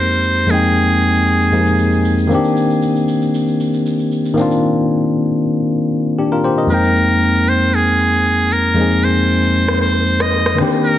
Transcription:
0.00 0.44 F2 medium
0.00 0.45 G#3 medium
0.00 0.45 A#3 medium
0.00 0.46 C4 medium
0.00 0.47 D#4 medium
0.00 0.48 G4 medium
0.00 0.52 C5 loud
0.12 shaker soft
0.24 shaker medium
0.37 shaker medium
0.46 1.49 F2 medium
0.46 1.50 G#3 medium
0.46 1.51 A#3 medium
0.46 shaker medium
0.50 1.52 C4 medium
0.50 1.52 D#4 medium
0.50 2.31 G#4 medium
0.50 1.53 G5 medium
0.63 shaker medium
0.75 shaker medium
0.89 shaker medium
1.01 shaker medium
1.15 shaker medium
1.27 shaker medium
1.41 shaker soft
1.51 2.30 F2 medium
1.51 2.30 G#3 soft
1.51 2.28 A#3 medium
1.51 2.30 C4 medium
1.51 2.31 D#4 soft
1.51 1.61 G4 soft
1.51 shaker medium
1.61 2.35 G#4 medium
1.67 shaker medium
1.79 shaker medium
1.92 shaker medium
2.05 shaker medium
2.18 shaker medium
2.27 4.32 D#3 medium
2.27 4.33 A#3 medium
2.27 4.34 C4 medium
2.27 shaker medium
2.33 4.35 D4 medium
2.33 4.36 G4 medium
2.44 shaker medium
2.57 shaker medium
2.70 shaker medium
2.82 shaker medium
2.96 shaker medium
3.08 shaker medium
3.22 shaker medium
3.35 shaker medium
3.48 shaker soft
3.60 shaker medium
3.74 shaker medium
3.86 shaker medium
3.99 shaker medium
4.12 shaker medium
4.25 shaker medium
4.34 6.39 D#3 medium
4.34 6.40 A#3 medium
4.34 6.41 C4 medium
4.34 shaker medium
4.40 6.16 D4 medium
4.40 6.17 F4 medium
4.51 shaker medium
6.19 6.32 D4 medium
6.19 6.31 G4 medium
6.32 6.44 F4 medium
6.32 6.44 A#4 medium
6.44 6.58 G4 medium
6.44 6.57 C5 medium
6.58 6.83 A#4 medium
6.58 6.83 D#5 medium
6.67 8.71 F2 medium
6.67 8.72 G#3 medium
6.67 8.73 A#3 medium
6.67 shaker medium
6.71 8.74 C4 medium
6.71 8.74 D#4 medium
6.71 7.50 A#4 medium
6.71 8.75 G5 medium
6.84 shaker medium
6.96 shaker medium
7.10 shaker medium
7.22 shaker medium
7.36 shaker medium
7.48 7.76 C5 medium
7.48 shaker medium
7.61 shaker medium
7.74 8.54 G#4 medium
7.74 shaker medium
7.87 shaker medium
8.00 shaker medium
8.13 shaker soft
8.25 shaker medium
8.39 shaker medium
8.51 9.05 A#4 loud
8.51 shaker medium
8.65 shaker medium
8.74 10.53 F2 medium
8.74 10.54 G#3 medium
8.74 10.54 A#3 medium
8.74 shaker medium
8.78 10.55 C4 medium
8.78 10.56 D#4 medium
8.78 10.57 G#4 medium
8.91 shaker medium
9.03 9.81 C5 loud
9.03 shaker medium
9.17 shaker soft
9.29 shaker medium
9.43 shaker medium
9.55 shaker medium
9.68 cross-stick medium
9.68 shaker soft
9.81 10.23 C5 loud
9.81 shaker medium
9.94 shaker medium
10.07 shaker medium
10.20 10.59 D#5 loud
10.20 cross-stick medium
10.20 shaker medium
10.32 shaker medium
10.46 cross-stick loud
10.46 shaker medium
10.55 10.63 D3 medium
10.55 10.98 A#3 medium
10.55 10.98 C4 medium
10.55 cross-stick medium
10.55 shaker medium
10.60 10.98 D#3 medium
10.60 10.98 D4 medium
10.60 10.98 G4 medium
10.72 shaker medium
10.84 10.98 A#4 loud
10.84 shaker medium

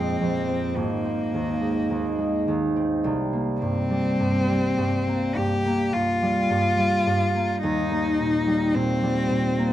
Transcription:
0.00 0.80 A#1 soft
0.00 0.19 F2 soft
0.00 1.60 G#3 soft
0.00 0.47 C4 soft
0.00 0.78 C4 soft
0.20 0.81 F2 soft
0.48 1.04 C4 soft
0.76 3.09 G#1 soft
0.76 2.47 A#3 soft
1.05 2.75 C4 soft
1.34 1.89 D#2 soft
1.61 2.17 G#3 soft
1.90 2.47 D#2 soft
2.18 3.10 G#3 soft
2.48 3.10 D#2 soft
2.76 6.66 C4 soft
3.04 6.94 C2 soft
3.33 5.06 A#3 soft
3.61 4.18 G2 soft
3.61 5.38 C4 medium
3.90 4.48 G3 soft
4.20 4.76 G2 soft
4.49 6.21 G3 soft
4.77 5.36 G2 soft
5.08 5.65 A#3 soft
5.36 5.93 G2 soft
5.36 5.95 G4 soft
5.66 7.33 A#3 soft
5.93 6.49 G2 soft
5.93 7.62 F4 medium
6.22 6.77 G3 soft
6.50 7.05 G2 soft
6.78 8.46 G3 soft
7.06 7.67 G2 soft
7.34 7.90 A#3 soft
7.63 9.73 D#2 soft
7.63 8.76 D#4 soft
7.91 9.57 A#3 soft
8.20 8.74 A#2 soft
8.47 9.02 G3 soft
8.75 9.29 A#2 soft
8.75 9.73 C4 medium
9.03 9.73 G3 soft
9.30 9.73 A#2 soft
9.58 9.73 A#3 soft

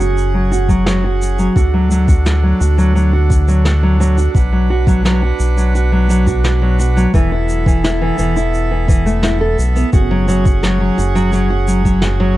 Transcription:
0.00 1.49 F#1 medium
0.00 1.53 C#4 medium
0.00 0.32 F#4 medium
0.00 1.53 G#4 medium
0.00 4.31 F#5 medium
0.00 shaker medium
0.18 shaker soft
0.34 0.50 F#3 medium
0.51 0.67 F#4 medium
0.51 shaker medium
0.69 0.85 F#3 medium
0.69 kick medium
0.69 shaker soft
0.86 1.02 F#3 medium
0.86 snare medium
0.86 shaker soft
1.04 1.37 F#4 medium
1.22 shaker medium
1.39 1.54 F#3 medium
1.39 shaker soft
1.56 2.54 D2 medium
1.56 7.10 D4 medium
1.56 1.72 F#4 medium
1.56 4.32 A4 medium
1.56 kick loud
1.56 shaker soft
1.74 1.89 F#3 medium
1.91 2.07 F#3 medium
1.91 shaker medium
2.08 2.42 F#4 medium
2.08 kick loud
2.08 shaker medium
2.26 snare medium
2.26 shaker soft
2.43 2.59 F#3 medium
2.61 4.28 D2 loud
2.61 2.76 F#4 medium
2.61 shaker medium
2.78 2.94 F#3 medium
2.78 shaker soft
2.95 3.11 F#3 medium
2.95 shaker soft
3.13 3.46 F#4 medium
3.30 kick loud
3.30 shaker medium
3.48 3.64 F#3 medium
3.48 shaker medium
3.65 3.81 F#4 medium
3.65 snare medium
3.65 shaker soft
3.83 3.98 F#3 medium
4.00 4.16 F#3 medium
4.00 shaker medium
4.18 4.35 F#4 medium
4.18 shaker medium
4.35 5.33 B1 medium
4.35 7.11 B4 medium
4.35 7.11 F#5 medium
4.35 kick loud
4.35 shaker soft
4.52 4.68 F#3 medium
4.70 4.86 F#4 medium
4.87 5.03 F#3 loud
4.87 kick loud
4.87 shaker medium
5.05 5.21 F#3 medium
5.05 snare medium
5.05 shaker soft
5.23 5.56 F#4 medium
5.39 7.07 B1 medium
5.39 shaker medium
5.57 5.73 F#3 medium
5.57 shaker medium
5.75 5.90 F#4 medium
5.75 shaker medium
5.92 6.08 F#3 medium
6.10 6.25 F#3 medium
6.10 shaker medium
6.27 6.60 F#4 medium
6.27 kick medium
6.27 shaker medium
6.44 snare medium
6.44 shaker soft
6.62 6.78 F#3 medium
6.79 6.95 F#4 medium
6.79 shaker medium
6.97 7.12 F#3 medium
6.97 shaker soft
7.14 8.12 E1 medium
7.14 7.30 E3 loud
7.14 9.91 B3 medium
7.14 9.91 A4 medium
7.14 9.90 E5 medium
7.14 kick loud
7.14 shaker soft
7.32 7.65 E4 medium
7.49 shaker medium
7.66 7.82 E3 medium
7.66 kick loud
7.66 shaker medium
7.84 8.00 E4 medium
7.84 snare medium
7.84 shaker soft
8.02 8.17 E3 medium
8.18 9.58 E1 loud
8.18 8.34 E3 medium
8.18 shaker medium
8.36 8.69 E4 medium
8.36 shaker medium
8.54 shaker soft
8.71 8.87 E3 medium
8.88 9.04 E3 medium
8.88 kick loud
8.88 shaker medium
9.06 9.22 A3 medium
9.06 shaker soft
9.23 9.39 E4 medium
9.23 snare medium
9.23 shaker soft
9.41 9.57 A4 medium
9.58 9.85 B1 medium
9.58 shaker medium
9.76 9.92 B3 medium
9.76 shaker soft
9.93 10.91 F#1 medium
9.93 12.37 C#4 medium
9.93 10.09 F#4 medium
9.93 12.37 G#4 medium
9.93 12.37 F#5 medium
9.93 kick loud
9.93 shaker medium
10.11 10.26 F#3 medium
10.28 10.44 F#3 medium
10.28 shaker medium
10.45 10.61 F#4 medium
10.45 kick loud
10.45 shaker medium
10.63 10.79 F#3 medium
10.63 snare medium
10.63 shaker soft
10.80 10.96 F#3 medium
10.98 12.37 F#1 medium
10.98 11.13 F#4 medium
10.98 shaker medium
11.15 11.31 F#3 medium
11.15 shaker soft
11.33 11.48 F#3 loud
11.33 shaker soft
11.50 11.66 F#4 medium
11.68 11.83 F#3 medium
11.68 shaker medium
11.85 12.01 F#3 medium
11.85 kick soft
11.85 shaker medium
12.02 12.18 F#4 medium
12.02 snare medium
12.02 shaker soft
12.20 12.36 F#3 medium

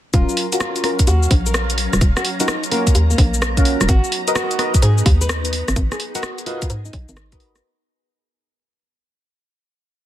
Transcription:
0.14 0.26 D#1 loud
0.14 0.46 F#3 loud
0.14 5.72 F#3 medium
0.14 0.46 C#4 loud
0.14 3.85 C#4 medium
0.14 0.46 F4 medium
0.14 0.46 F4 loud
0.14 0.46 A#4 loud
0.14 3.85 F5 medium
0.14 7.60 A#5 medium
0.14 kick loud
0.14 closed hi-hat medium
0.14 cabasa medium
0.29 cabasa soft
0.37 open hi-hat loud
0.52 0.82 C#4 medium
0.52 0.82 F4 medium
0.52 0.82 F#4 medium
0.52 0.82 A#4 medium
0.52 closed hi-hat medium
0.52 cabasa medium
0.60 0.93 F4 medium
0.60 cross-stick loud
0.60 cabasa medium
0.76 closed hi-hat soft
0.76 cabasa soft
0.84 0.99 C#4 medium
0.84 0.99 F4 medium
0.84 0.99 F#4 medium
0.84 0.99 A#4 medium
0.84 cross-stick medium
0.84 open hi-hat medium
0.99 kick medium
0.99 closed hi-hat medium
0.99 cabasa medium
1.07 1.28 D#2 medium
1.07 1.30 F#4 medium
1.07 closed hi-hat medium
1.07 cabasa soft
1.23 cabasa soft
1.31 1.88 A#1 loud
1.31 kick loud
1.31 open hi-hat loud
1.46 1.69 A#4 medium
1.46 cabasa medium
1.54 cross-stick loud
1.54 cabasa medium
1.70 closed hi-hat medium
1.70 cabasa soft
1.78 open hi-hat loud
1.93 1.99 D#1 medium
1.93 cross-stick medium
1.93 closed hi-hat soft
1.93 cabasa medium
2.01 2.13 D#1 loud
2.01 kick loud
2.01 closed hi-hat medium
2.01 cabasa medium
2.17 2.29 F#4 medium
2.17 cross-stick medium
2.17 cabasa soft
2.25 open hi-hat loud
2.40 2.48 C#4 medium
2.40 2.62 D#4 loud
2.40 2.48 F4 medium
2.40 2.48 F#4 medium
2.40 2.48 A#4 medium
2.40 closed hi-hat medium
2.40 cabasa medium
2.48 cross-stick loud
2.48 cabasa medium
2.63 closed hi-hat soft
2.63 cabasa soft
2.71 2.94 A#3 medium
2.71 2.91 C#4 medium
2.71 2.91 F4 medium
2.71 2.91 F#4 medium
2.71 2.91 A#4 loud
2.71 open hi-hat medium
2.87 kick medium
2.87 closed hi-hat medium
2.87 cabasa medium
2.95 3.15 D#2 medium
2.95 closed hi-hat medium
2.95 cabasa medium
3.10 3.82 A#3 loud
3.10 cabasa soft
3.18 3.76 A#1 loud
3.18 kick loud
3.18 open hi-hat loud
3.34 cabasa medium
3.42 cross-stick loud
3.42 cabasa soft
3.57 3.88 C#4 medium
3.57 3.88 F4 medium
3.57 3.88 F#4 medium
3.57 3.88 A#4 loud
3.57 kick medium
3.57 closed hi-hat medium
3.57 cabasa soft
3.65 open hi-hat loud
3.81 3.87 D#1 medium
3.81 cross-stick medium
3.81 closed hi-hat soft
3.81 cabasa medium
3.88 4.01 G#1 loud
3.88 7.60 B3 medium
3.88 7.60 D#4 medium
3.88 4.21 F#4 loud
3.88 kick loud
3.88 closed hi-hat medium
3.88 cabasa medium
4.04 cabasa soft
4.12 open hi-hat loud
4.28 4.57 F#4 medium
4.28 4.57 A#4 medium
4.28 4.57 B4 medium
4.28 4.57 D#5 medium
4.28 closed hi-hat medium
4.28 cabasa medium
4.35 4.68 F#4 loud
4.35 cross-stick loud
4.35 cabasa medium
4.51 closed hi-hat soft
4.51 cabasa soft
4.59 4.74 F#4 medium
4.59 4.74 A#4 medium
4.59 4.74 B4 medium
4.59 4.74 D#5 medium
4.59 cross-stick medium
4.59 open hi-hat medium
4.74 kick medium
4.74 closed hi-hat medium
4.74 cabasa medium
4.82 5.03 G#2 medium
4.82 5.05 G#4 medium
4.82 closed hi-hat medium
4.82 cabasa medium
4.98 cabasa soft
5.06 5.63 D#2 loud
5.06 kick loud
5.06 open hi-hat loud
5.21 5.44 B4 loud
5.21 cabasa medium
5.29 cross-stick loud
5.29 cabasa medium
5.45 closed hi-hat medium
5.45 cabasa soft
5.53 open hi-hat medium
5.68 5.75 G#1 medium
5.68 cross-stick medium
5.68 closed hi-hat soft
5.68 cabasa medium
5.76 5.88 G#1 loud
5.76 7.62 G#4 medium
5.76 kick loud
5.76 closed hi-hat medium
5.76 cabasa medium
5.92 6.04 G#4 medium
5.92 cross-stick medium
5.92 cabasa soft
6.00 open hi-hat loud
6.15 6.37 F#4 loud
6.15 6.23 F#4 medium
6.15 6.23 A#4 medium
6.15 6.23 B4 medium
6.15 6.23 D#5 medium
6.15 closed hi-hat medium
6.15 cabasa medium
6.23 cross-stick loud
6.23 cabasa medium
6.38 closed hi-hat soft
6.38 cabasa soft
6.46 6.69 F4 loud
6.46 6.66 F#4 medium
6.46 6.66 A#4 medium
6.46 6.66 B4 medium
6.46 6.66 D#5 medium
6.46 open hi-hat medium
6.62 kick medium
6.62 closed hi-hat medium
6.62 cabasa medium
6.70 6.90 G#2 medium
6.70 closed hi-hat medium
6.70 cabasa medium
6.85 7.57 D#4 loud
6.85 cabasa soft
6.93 7.06 B1 loud
6.93 kick loud
6.93 open hi-hat loud
7.09 7.61 G#1 medium
7.09 cabasa medium
7.17 cross-stick loud
7.17 cabasa medium
7.32 7.63 F#4 medium
7.32 7.63 A#4 medium
7.32 7.63 B4 medium
7.32 7.63 D#5 medium
7.32 kick medium
7.32 closed hi-hat medium
7.32 cabasa soft
7.40 open hi-hat medium
7.56 cross-stick medium
7.56 closed hi-hat soft
7.56 cabasa medium

